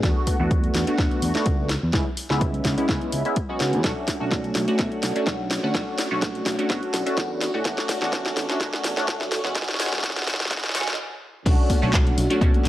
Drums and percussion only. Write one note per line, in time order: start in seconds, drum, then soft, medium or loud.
0.03 kick loud
0.03 snare medium
0.03 closed hi-hat medium
0.27 kick medium
0.27 open hi-hat loud
0.51 kick loud
0.51 closed hi-hat medium
0.64 closed hi-hat soft
0.74 snare medium
0.74 open hi-hat loud
0.87 closed hi-hat soft
0.98 kick loud
0.98 snare medium
0.98 closed hi-hat medium
1.11 closed hi-hat soft
1.22 open hi-hat loud
1.35 snare medium
1.35 closed hi-hat medium
1.46 kick loud
1.46 closed hi-hat medium
1.69 snare medium
1.69 open hi-hat loud
1.93 kick loud
1.93 snare medium
1.93 closed hi-hat medium
2.17 open hi-hat loud
2.30 snare medium
2.41 kick loud
2.41 closed hi-hat medium
2.54 closed hi-hat soft
2.65 kick medium
2.65 snare medium
2.65 open hi-hat loud
2.78 closed hi-hat soft
2.89 kick loud
2.89 snare medium
2.89 closed hi-hat medium
3.01 closed hi-hat soft
3.12 open hi-hat loud
3.25 closed hi-hat soft
3.36 kick loud
3.36 closed hi-hat medium
3.60 snare medium
3.60 open hi-hat loud
3.73 closed hi-hat soft
3.84 kick loud
3.84 snare medium
3.84 closed hi-hat medium
4.08 kick medium
4.08 snare medium
4.08 open hi-hat loud
4.31 kick loud
4.31 snare medium
4.31 closed hi-hat medium
4.44 closed hi-hat soft
4.55 snare medium
4.55 open hi-hat loud
4.68 closed hi-hat medium
4.79 kick loud
4.79 snare medium
4.79 closed hi-hat medium
4.92 closed hi-hat soft
5.03 snare medium
5.03 open hi-hat loud
5.16 closed hi-hat medium
5.27 kick loud
5.27 snare medium
5.27 closed hi-hat medium
5.51 snare medium
5.51 open hi-hat loud
5.75 kick loud
5.75 snare medium
5.75 closed hi-hat medium
5.98 snare medium
5.98 open hi-hat loud
6.22 kick loud
6.22 snare medium
6.22 closed hi-hat medium
6.35 closed hi-hat soft
6.46 kick medium
6.46 snare medium
6.46 open hi-hat loud
6.59 closed hi-hat medium
6.70 kick loud
6.70 snare medium
6.70 closed hi-hat medium
6.83 closed hi-hat soft
6.94 snare medium
6.94 open hi-hat loud
7.07 closed hi-hat medium
7.18 kick loud
7.18 snare medium
7.18 closed hi-hat medium
7.41 snare medium
7.41 open hi-hat loud
7.65 kick loud
7.65 snare medium
7.65 closed hi-hat medium
7.78 snare medium
7.89 kick medium
7.89 snare loud
7.89 open hi-hat loud
8.02 snare medium
8.13 kick loud
8.13 snare loud
8.13 closed hi-hat medium
8.26 snare medium
8.26 closed hi-hat soft
8.37 snare medium
8.37 open hi-hat loud
8.49 snare medium
8.49 closed hi-hat medium
8.60 kick loud
8.60 snare medium
8.60 closed hi-hat medium
8.73 snare medium
8.73 closed hi-hat soft
8.84 snare loud
8.84 open hi-hat loud
8.97 snare medium
8.97 closed hi-hat medium
9.08 kick loud
9.08 snare loud
9.08 closed hi-hat medium
9.21 snare medium
9.32 snare loud
9.32 open hi-hat loud
9.45 snare medium
9.55 kick loud
9.55 snare loud
9.55 closed hi-hat medium
9.62 snare medium
9.68 snare medium
9.74 snare medium
9.80 snare loud
9.80 open hi-hat loud
9.86 snare medium
9.93 snare medium
9.93 closed hi-hat soft
9.98 snare medium
10.03 kick loud
10.03 snare loud
10.03 closed hi-hat medium
10.10 snare medium
10.17 snare medium
10.17 closed hi-hat soft
10.22 snare medium
10.27 kick medium
10.27 snare loud
10.27 open hi-hat loud
10.34 snare loud
10.40 snare medium
10.40 closed hi-hat medium
10.45 snare medium
10.51 kick loud
10.51 snare loud
10.51 closed hi-hat medium
10.57 snare medium
10.64 snare medium
10.64 closed hi-hat soft
10.69 snare medium
10.75 snare loud
10.75 open hi-hat loud
10.81 snare loud
10.88 snare loud
10.88 closed hi-hat medium
10.93 snare loud
11.46 kick loud
11.46 closed hi-hat medium
11.46 crash loud
11.46 tambourine medium
11.60 tambourine soft
11.70 kick medium
11.70 open hi-hat loud
11.70 tambourine medium
11.70 high conga medium
11.83 tambourine soft
11.94 kick loud
11.94 clap loud
11.94 closed hi-hat medium
11.94 tambourine medium
12.07 closed hi-hat soft
12.07 tambourine soft
12.07 high conga medium
12.07 low conga medium
12.18 open hi-hat loud
12.18 tambourine loud
12.30 closed hi-hat medium
12.30 tambourine soft
12.41 kick loud
12.41 closed hi-hat medium
12.41 tambourine medium
12.54 closed hi-hat soft
12.54 tambourine soft
12.54 high conga medium
12.65 clap soft
12.65 open hi-hat loud
12.65 tambourine medium